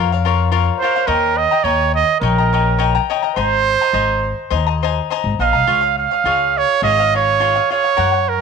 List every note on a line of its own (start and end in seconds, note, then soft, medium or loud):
0.00 0.68 F2 medium
0.00 0.11 F4 medium
0.00 0.11 A#4 medium
0.00 0.11 C#5 medium
0.00 0.11 F5 medium
0.12 0.24 A#4 soft
0.12 0.25 C#5 soft
0.12 0.26 F5 medium
0.25 0.50 F4 medium
0.25 0.51 A#4 medium
0.25 0.51 C#5 medium
0.25 0.51 F5 medium
0.52 0.81 F4 medium
0.52 0.82 A#4 medium
0.52 0.82 C#5 medium
0.52 0.82 F5 medium
0.79 0.95 F4 medium
0.79 1.08 C5 medium
0.83 0.95 A#4 soft
0.83 0.95 C#5 medium
0.83 0.94 F5 medium
0.96 1.07 A#4 soft
0.96 1.06 C#5 soft
0.96 1.08 F5 soft
1.07 1.44 D#2 medium
1.07 1.39 A#4 medium
1.07 1.51 C#5 medium
1.07 1.51 D#5 medium
1.07 1.51 G5 medium
1.07 1.50 A#5 medium
1.37 1.65 D#5 medium
1.51 1.64 D#5 soft
1.51 1.63 G5 soft
1.51 1.64 A#5 soft
1.64 2.01 D#2 medium
1.64 1.94 C#5 medium
1.64 2.21 C#5 medium
1.64 2.22 D#5 medium
1.64 2.22 G5 medium
1.64 2.23 A#5 medium
1.95 2.20 D#5 medium
2.21 2.96 A#1 loud
2.21 3.05 A#4 medium
2.21 2.37 C#5 medium
2.21 2.37 D#5 medium
2.21 2.37 G5 medium
2.21 2.37 A#5 medium
2.38 2.53 D#5 soft
2.38 2.53 G5 soft
2.38 2.53 A#5 medium
2.53 2.77 C#5 medium
2.53 2.79 D#5 medium
2.53 2.78 G5 medium
2.53 2.78 A#5 medium
2.78 2.94 C#5 medium
2.78 2.95 D#5 medium
2.78 2.94 G5 medium
2.78 2.93 A#5 medium
2.95 3.09 D#5 soft
2.95 3.09 G5 soft
2.95 3.10 A#5 medium
3.10 3.23 C#5 medium
3.10 3.22 D#5 medium
3.10 3.22 G5 medium
3.10 3.21 A#5 medium
3.22 3.36 D#5 soft
3.22 3.36 G5 soft
3.22 3.36 A#5 soft
3.35 3.74 G#1 medium
3.35 4.47 C5 loud
3.35 3.81 C5 medium
3.35 3.81 D#5 medium
3.35 3.81 G#5 medium
3.35 3.80 A#5 medium
3.81 3.93 D#5 soft
3.81 3.93 G#5 soft
3.81 3.93 A#5 soft
3.93 4.31 G#1 medium
3.93 4.49 C5 medium
3.93 4.50 D#5 medium
3.93 4.51 G#5 medium
3.93 4.51 A#5 medium
4.50 4.99 D#2 medium
4.50 4.67 C5 medium
4.50 4.67 D#5 medium
4.50 4.66 G#5 medium
4.50 4.65 A#5 medium
4.67 4.82 D#5 soft
4.67 4.83 G#5 soft
4.67 4.82 A#5 soft
4.83 5.09 C5 medium
4.83 5.10 D#5 medium
4.83 5.10 G#5 medium
4.83 5.10 A#5 medium
5.10 5.39 C5 medium
5.10 5.40 D#5 medium
5.10 5.40 G#5 medium
5.10 5.40 A#5 medium
5.24 5.38 G#1 medium
5.39 5.52 A#1 medium
5.39 5.54 C5 soft
5.39 5.54 D#5 medium
5.39 5.95 F5 medium
5.39 5.53 G#5 medium
5.39 5.52 A#5 medium
5.53 5.66 C2 medium
5.53 5.67 D#5 soft
5.53 5.67 G#5 soft
5.53 5.67 A#5 soft
5.67 6.04 C#2 medium
5.67 5.83 F4 medium
5.67 5.82 G#4 medium
5.67 5.81 C#5 medium
5.67 5.80 F5 medium
5.81 6.12 G#4 soft
5.81 6.10 C#5 soft
5.81 6.10 F5 soft
5.99 6.59 F5 medium
6.11 6.24 G#4 soft
6.11 6.25 C#5 soft
6.11 6.25 F5 soft
6.24 6.62 C#2 medium
6.24 6.81 F4 medium
6.24 6.82 G#4 medium
6.24 6.83 C#5 medium
6.24 6.83 F5 medium
6.58 6.83 C#5 medium
6.82 7.57 G#1 medium
6.82 6.98 F4 soft
6.82 6.98 G#4 medium
6.82 6.99 C#5 medium
6.82 7.12 D#5 medium
6.82 6.98 F5 medium
6.99 7.13 G#4 soft
6.99 7.14 C#5 soft
6.99 7.14 F5 soft
7.14 7.39 F4 soft
7.14 7.40 G#4 medium
7.14 7.40 C#5 medium
7.14 7.68 C#5 medium
7.14 7.40 F5 medium
7.40 7.56 F4 medium
7.40 7.55 G#4 medium
7.40 7.55 C#5 medium
7.40 7.54 F5 medium
7.55 7.69 G#4 soft
7.55 7.70 C#5 soft
7.55 7.70 F5 medium
7.70 7.84 F4 soft
7.70 7.84 G#4 medium
7.70 7.84 C#5 medium
7.70 8.30 C#5 medium
7.70 7.83 F5 medium
7.84 7.96 G#4 soft
7.84 7.96 C#5 soft
7.84 7.97 F5 soft
7.97 8.35 F#2 medium
7.97 8.13 F#4 medium
7.97 8.12 A#4 medium
7.97 8.12 C#5 medium
7.97 8.11 F#5 medium
8.12 8.41 A#4 soft
8.12 8.40 C#5 soft
8.12 8.39 F#5 soft
8.29 8.41 A#4 medium